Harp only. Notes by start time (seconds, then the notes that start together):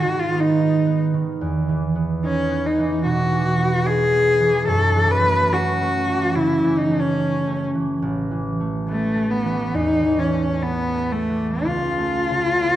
Already playing: G#2 F#3 G#3 B3 D#4
0.05 D#3
0.32 B3
0.59 D#4
0.86 B3
1.14 D#3
1.41 E2
1.69 E3
1.95 B3
2.24 D#4
2.51 B3
2.78 E3
3.05 B2
3.32 E3
3.59 B3
3.86 D#4
4.13 B3
4.40 E3
4.67 F#2
4.96 E3
5.25 A3
5.53 C#4
5.81 A3
6.08 E3
6.35 C#3
6.64 E3
6.92 A3
7.20 C#4
7.47 A3
7.75 E3
8.02 A1
8.31 E3
8.60 A3
8.88 B3
9.16 A3
9.45 E3
9.74 E2
10.03 E3
10.32 A3
10.62 B3
10.94 A3
11.29 E3
11.65 C#2
11.98 A3
12.30 C#3
12.61 B3